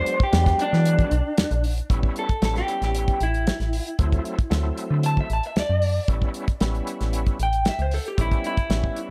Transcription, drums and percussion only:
0.06 closed hi-hat medium
0.20 kick medium
0.33 snare loud
0.33 closed hi-hat medium
0.46 kick medium
0.46 snare soft
0.46 closed hi-hat soft
0.59 closed hi-hat medium
0.73 snare soft
0.85 closed hi-hat medium
0.99 kick medium
0.99 closed hi-hat soft
1.11 closed hi-hat medium
1.38 snare loud
1.38 closed hi-hat medium
1.51 closed hi-hat soft
1.64 open hi-hat medium
1.78 closed hi-hat soft
1.90 kick medium
1.90 closed hi-hat medium
2.03 kick medium
2.16 closed hi-hat medium
2.29 kick medium
2.29 closed hi-hat soft
2.42 snare loud
2.42 closed hi-hat medium
2.56 snare soft
2.56 closed hi-hat soft
2.68 closed hi-hat medium
2.82 snare soft
2.82 closed hi-hat soft
2.95 closed hi-hat medium
3.08 kick medium
3.08 closed hi-hat soft
3.20 closed hi-hat medium
3.34 closed hi-hat soft
3.47 snare loud
3.47 closed hi-hat medium
3.60 snare soft
3.60 closed hi-hat soft
3.73 open hi-hat medium
3.87 closed hi-hat soft
3.99 kick loud
3.99 closed hi-hat medium
4.12 kick medium
4.12 closed hi-hat soft
4.25 closed hi-hat medium
4.39 kick medium
4.39 closed hi-hat soft
4.51 snare loud
4.51 closed hi-hat medium
4.77 closed hi-hat medium
5.03 closed hi-hat medium
5.17 kick medium
5.30 closed hi-hat soft
5.43 closed hi-hat soft
5.56 snare loud
5.56 closed hi-hat medium
5.82 open hi-hat medium
6.08 kick loud
6.08 closed hi-hat medium
6.22 kick medium
6.34 closed hi-hat medium
6.48 kick medium
6.48 closed hi-hat soft
6.60 snare loud
6.60 closed hi-hat medium
6.75 closed hi-hat soft
6.87 closed hi-hat medium
7.01 snare soft
7.01 closed hi-hat soft
7.13 closed hi-hat medium
7.26 kick medium
7.26 closed hi-hat soft
7.39 closed hi-hat medium
7.53 closed hi-hat soft
7.65 snare loud
7.65 closed hi-hat medium
7.79 closed hi-hat soft
7.91 open hi-hat medium
8.05 closed hi-hat soft
8.18 kick loud
8.18 closed hi-hat medium
8.32 kick medium
8.32 closed hi-hat soft
8.44 closed hi-hat medium
8.57 kick medium
8.57 closed hi-hat soft
8.70 snare loud
8.70 closed hi-hat medium
8.84 kick medium
8.96 closed hi-hat medium

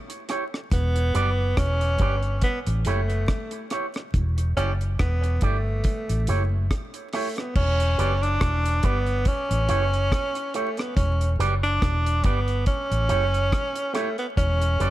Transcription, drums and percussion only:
0.10 closed hi-hat medium
0.29 cross-stick medium
0.29 closed hi-hat medium
0.54 cross-stick medium
0.71 kick loud
0.71 closed hi-hat medium
0.96 closed hi-hat medium
1.15 closed hi-hat medium
1.57 kick loud
1.57 cross-stick loud
1.57 closed hi-hat medium
1.81 closed hi-hat soft
1.99 kick medium
1.99 closed hi-hat medium
2.23 closed hi-hat soft
2.42 kick loud
2.42 closed hi-hat medium
2.66 closed hi-hat medium
2.85 closed hi-hat medium
3.10 closed hi-hat soft
3.28 kick loud
3.28 cross-stick loud
3.28 closed hi-hat medium
3.51 closed hi-hat medium
3.70 cross-stick medium
3.70 closed hi-hat medium
3.94 cross-stick medium
3.94 closed hi-hat soft
4.14 kick loud
4.14 closed hi-hat medium
4.38 closed hi-hat medium
4.57 closed hi-hat medium
4.81 closed hi-hat soft
4.99 kick loud
4.99 cross-stick loud
4.99 closed hi-hat medium
5.24 closed hi-hat soft
5.41 kick medium
5.41 closed hi-hat medium
5.84 kick loud
5.84 closed hi-hat medium
6.09 closed hi-hat medium
6.27 closed hi-hat medium
6.71 kick loud
6.71 cross-stick loud
6.71 closed hi-hat medium
6.94 closed hi-hat medium
7.13 cross-stick medium
7.13 open hi-hat medium
7.36 cross-stick medium
7.36 closed hi-hat soft
7.55 kick loud
7.55 crash medium
7.80 closed hi-hat medium
7.99 closed hi-hat medium
8.23 closed hi-hat soft
8.41 kick loud
8.41 cross-stick loud
8.41 closed hi-hat medium
8.65 closed hi-hat medium
8.83 kick medium
8.83 closed hi-hat medium
9.06 closed hi-hat soft
9.25 kick loud
9.25 closed hi-hat medium
9.51 closed hi-hat medium
9.69 closed hi-hat medium
9.94 closed hi-hat soft
10.12 kick loud
10.12 cross-stick loud
10.12 closed hi-hat medium
10.35 closed hi-hat medium
10.54 closed hi-hat medium
10.77 cross-stick medium
10.77 closed hi-hat soft
10.97 kick loud
10.97 closed hi-hat loud
11.21 closed hi-hat medium
11.40 closed hi-hat medium
11.64 closed hi-hat soft
11.82 kick loud
11.82 cross-stick loud
11.82 closed hi-hat medium
12.06 closed hi-hat medium
12.23 kick loud
12.23 closed hi-hat medium
12.48 closed hi-hat soft
12.66 kick loud
12.66 closed hi-hat medium
12.92 closed hi-hat medium
13.09 closed hi-hat medium
13.34 closed hi-hat soft
13.52 kick loud
13.52 cross-stick loud
13.52 closed hi-hat medium
13.76 closed hi-hat medium
13.95 cross-stick medium
13.95 closed hi-hat medium
14.18 closed hi-hat soft
14.37 kick loud
14.37 closed hi-hat medium
14.62 closed hi-hat medium
14.80 closed hi-hat medium

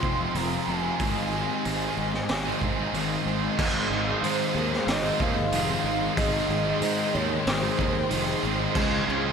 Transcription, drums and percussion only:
0.03 kick medium
0.35 open hi-hat medium
0.99 kick loud
0.99 open hi-hat medium
1.65 open hi-hat medium
2.14 snare soft
2.29 snare loud
2.29 open hi-hat medium
2.62 kick medium
2.94 open hi-hat medium
3.59 kick loud
3.59 crash loud
4.24 open hi-hat medium
4.73 snare soft
4.88 snare loud
4.88 open hi-hat medium
5.20 kick medium
5.52 open hi-hat medium
6.17 kick loud
6.17 open hi-hat medium
6.82 open hi-hat medium
7.47 snare loud
7.47 open hi-hat medium
7.79 kick medium
8.11 open hi-hat medium
8.75 kick loud
8.75 crash loud

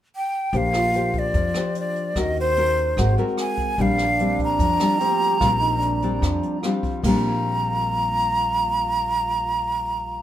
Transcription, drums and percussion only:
0.53 kick soft
0.53 closed hi-hat soft
0.73 cross-stick medium
0.73 closed hi-hat soft
0.93 closed hi-hat soft
1.13 kick medium
1.13 closed hi-hat soft
1.34 kick medium
1.34 closed hi-hat soft
1.54 cross-stick medium
1.54 closed hi-hat soft
1.75 closed hi-hat soft
1.96 closed hi-hat soft
2.16 kick soft
2.16 cross-stick medium
2.16 closed hi-hat soft
2.36 closed hi-hat soft
2.56 closed hi-hat soft
2.77 closed hi-hat soft
2.97 kick medium
2.97 cross-stick medium
2.97 closed hi-hat soft
3.18 closed hi-hat soft
3.37 cross-stick medium
3.37 closed hi-hat soft
3.58 kick medium
3.58 closed hi-hat soft
3.78 kick medium
3.78 closed hi-hat soft
3.98 cross-stick medium
3.98 closed hi-hat soft
4.19 closed hi-hat soft
4.39 kick medium
4.39 closed hi-hat soft
4.59 kick medium
4.59 closed hi-hat soft
4.80 cross-stick medium
4.80 closed hi-hat soft
5.00 closed hi-hat soft
5.21 closed hi-hat soft
5.41 kick medium
5.41 cross-stick medium
5.41 closed hi-hat soft
5.61 closed hi-hat soft
5.82 closed hi-hat soft
6.02 closed hi-hat soft
6.22 kick medium
6.22 cross-stick medium
6.22 closed hi-hat soft
6.43 closed hi-hat soft
6.63 cross-stick medium
6.63 closed hi-hat soft
6.83 kick medium
6.83 closed hi-hat soft
7.04 kick medium
7.04 crash medium

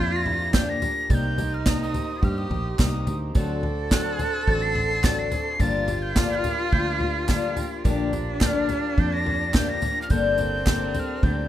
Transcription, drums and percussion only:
0.26 floor tom medium
0.54 kick loud
0.54 snare loud
0.54 clap loud
0.54 floor tom medium
0.54 tambourine medium
0.82 floor tom loud
0.82 tambourine medium
1.10 kick loud
1.10 floor tom medium
1.10 tambourine medium
1.38 floor tom medium
1.38 tambourine medium
1.66 kick loud
1.66 snare loud
1.66 clap loud
1.66 floor tom medium
1.66 tambourine medium
1.94 floor tom medium
1.94 tambourine medium
2.23 kick loud
2.23 floor tom medium
2.23 tambourine soft
2.51 floor tom medium
2.79 kick loud
2.79 snare loud
2.79 clap medium
2.79 floor tom loud
2.79 tambourine medium
3.07 floor tom medium
3.07 tambourine medium
3.35 kick loud
3.35 floor tom loud
3.35 tambourine medium
3.63 floor tom medium
3.91 kick loud
3.91 snare loud
3.91 clap loud
3.91 floor tom medium
3.91 tambourine medium
4.19 floor tom medium
4.19 tambourine medium
4.47 kick loud
4.47 floor tom medium
4.75 floor tom medium
5.04 kick loud
5.04 snare loud
5.04 clap loud
5.04 floor tom loud
5.04 tambourine medium
5.32 floor tom loud
5.32 tambourine medium
5.60 kick loud
5.60 floor tom medium
5.60 tambourine medium
5.88 floor tom medium
5.88 tambourine medium
6.16 kick loud
6.16 snare loud
6.16 clap loud
6.16 floor tom medium
6.16 tambourine loud
6.44 floor tom medium
6.44 tambourine medium
6.72 kick loud
6.72 floor tom medium
7.01 floor tom medium
7.28 kick loud
7.28 snare loud
7.28 clap loud
7.28 floor tom medium
7.28 tambourine loud
7.57 floor tom medium
7.57 tambourine medium
7.85 kick loud
7.85 floor tom loud
7.85 tambourine medium
8.13 floor tom medium
8.13 tambourine medium
8.41 kick loud
8.41 snare loud
8.41 clap loud
8.41 floor tom medium
8.41 tambourine loud
8.69 floor tom medium
8.69 tambourine medium
8.98 kick loud
8.98 floor tom medium
9.26 floor tom medium
9.54 kick loud
9.54 snare loud
9.54 clap loud
9.54 floor tom loud
9.54 tambourine loud
9.82 floor tom loud
9.82 tambourine medium
10.10 kick loud
10.10 floor tom medium
10.10 tambourine medium
10.38 floor tom medium
10.38 tambourine medium
10.66 kick loud
10.66 snare loud
10.66 clap loud
10.66 floor tom loud
10.66 tambourine loud
10.94 floor tom loud
10.94 tambourine medium
11.23 kick loud
11.23 floor tom medium
11.23 tambourine soft

